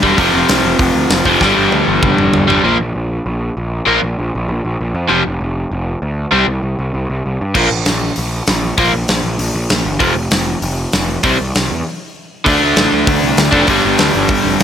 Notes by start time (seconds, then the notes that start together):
0.03 E1 D3 G3, kick
0.07 G2
0.17 F1 F2 C3 F3, kick, open hi-hat
0.33 F1
0.49 C2, snare, open hi-hat
0.63 F1
0.79 F1, kick, open hi-hat
0.95 D2
1.10 F1, snare, open hi-hat
1.25 F1 C3 F3, kick
1.29 F2
1.40 G1 G2 D3 G3, kick, snare
1.57 G1
1.72 D2, high tom
1.88 G1
2.03 G1, kick, mid tom
2.18 F1, mid tom
2.33 G1, floor tom
2.48 G1 G2 D3 G3, floor tom
2.63 A#1 A#2 F3 A#3
2.80 A#1
2.95 A#1
3.26 A#1
3.57 A#1
3.86 A#1 A#2 F3 A#3
4.03 A#1
4.19 A#1
4.35 A#1
4.48 A#1
4.65 A#1
4.81 A#1
4.94 F2
5.09 F1 F2 C3 F3
5.27 F1
5.41 F1
5.71 F1
6.02 D2
6.32 C2 C3 G3 C4
6.47 C2
6.63 C2
6.79 C2
6.94 C2
7.10 C2
7.26 C2
7.41 G2
7.55 A#1 A#2 F3 A#3, kick, crash
7.71 A#1
7.85 A#1, snare, open hi-hat
8.16 A#1, open hi-hat
8.47 A#1, snare, open hi-hat
8.78 A#1 A#2 F3 A#3, kick, open hi-hat
8.94 A#1
9.08 A#1, snare, open hi-hat
9.23 A#1
9.38 A#1, open hi-hat
9.54 A#1
9.69 A#1, snare, open hi-hat
9.85 G1
10.00 F1 F2 C3 F3, kick, open hi-hat
10.15 F1
10.31 F1, snare, open hi-hat
10.62 F1, open hi-hat
10.93 F1, snare, open hi-hat
11.23 C2 C3 G3 C4, kick, open hi-hat
11.40 C2
11.55 C2, snare, open hi-hat
11.71 E2
12.45 D2 D3 A3 D4, kick, open hi-hat
12.63 D2
12.76 A1, snare, open hi-hat
12.93 D2
13.07 D2, kick, open hi-hat
13.23 C2
13.37 D2, snare, open hi-hat
13.51 F1 D3 A3 D4, kick
13.66 G1 G2 D3 G3, kick, open hi-hat
13.85 G1
13.98 D2, snare, open hi-hat
14.15 G1
14.28 G1, kick, open hi-hat
14.45 F1
14.60 G1, open hi-hat